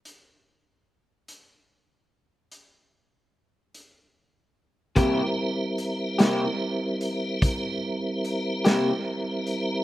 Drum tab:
HH |x--x--x--x--|x-xx-xx-xx-x|
SD |------------|---o-----o--|
BD |------------|o-----o-----|